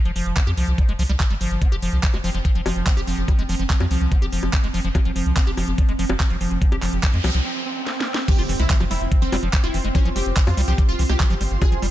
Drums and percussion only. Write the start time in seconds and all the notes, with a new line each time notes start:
0.05 closed hi-hat
0.16 open hi-hat
0.37 kick, clap, closed hi-hat
0.47 closed hi-hat
0.57 open hi-hat
0.68 closed hi-hat
0.78 kick, closed hi-hat
0.89 closed hi-hat
0.99 open hi-hat
1.20 kick, clap, closed hi-hat
1.30 closed hi-hat
1.41 open hi-hat
1.62 kick, closed hi-hat
1.72 closed hi-hat
1.82 open hi-hat
1.93 closed hi-hat
2.03 kick, clap, closed hi-hat
2.14 closed hi-hat, high bongo
2.24 open hi-hat
2.35 closed hi-hat
2.45 kick, closed hi-hat
2.55 closed hi-hat
2.66 open hi-hat, high bongo
2.76 closed hi-hat
2.87 kick, clap, closed hi-hat
2.97 closed hi-hat
3.07 open hi-hat
3.18 closed hi-hat
3.28 kick, closed hi-hat, high bongo
3.39 closed hi-hat
3.49 open hi-hat
3.60 closed hi-hat
3.70 kick, clap, closed hi-hat
3.80 closed hi-hat, high bongo
3.91 open hi-hat
4.01 closed hi-hat
4.12 kick, closed hi-hat
4.22 closed hi-hat
4.32 open hi-hat
4.43 closed hi-hat, high bongo
4.53 kick, clap, closed hi-hat
4.64 closed hi-hat
4.74 open hi-hat
4.85 closed hi-hat
4.95 kick, closed hi-hat, high bongo
5.05 closed hi-hat
5.16 open hi-hat
5.26 closed hi-hat
5.37 kick, clap, closed hi-hat
5.47 closed hi-hat
5.57 open hi-hat, high bongo
5.68 closed hi-hat
5.78 kick, closed hi-hat
5.89 closed hi-hat
5.99 open hi-hat
6.09 high bongo
6.20 kick, clap, closed hi-hat
6.30 closed hi-hat
6.41 open hi-hat
6.51 closed hi-hat
6.62 kick, closed hi-hat
6.72 closed hi-hat, high bongo
6.82 clap, open hi-hat
7.03 kick, clap, closed hi-hat
7.14 closed hi-hat
7.24 open hi-hat, high bongo
7.87 snare
8.00 snare
8.14 snare
8.28 kick, closed hi-hat, crash
8.39 closed hi-hat
8.49 open hi-hat
8.70 kick, clap, closed hi-hat
8.80 closed hi-hat, high bongo
8.91 open hi-hat
9.12 kick, closed hi-hat
9.22 closed hi-hat
9.32 open hi-hat, high bongo
9.43 closed hi-hat
9.53 kick, clap, closed hi-hat
9.64 closed hi-hat
9.74 open hi-hat
9.85 closed hi-hat
9.95 kick, closed hi-hat, high bongo
10.05 closed hi-hat
10.16 open hi-hat
10.26 closed hi-hat
10.37 kick, clap, closed hi-hat
10.47 closed hi-hat, high bongo
10.57 open hi-hat
10.68 closed hi-hat
10.78 kick, closed hi-hat
10.89 closed hi-hat
10.99 open hi-hat
11.10 closed hi-hat, high bongo
11.20 kick, clap, closed hi-hat
11.30 closed hi-hat
11.41 open hi-hat
11.51 closed hi-hat
11.62 kick, closed hi-hat, high bongo
11.72 closed hi-hat
11.82 open hi-hat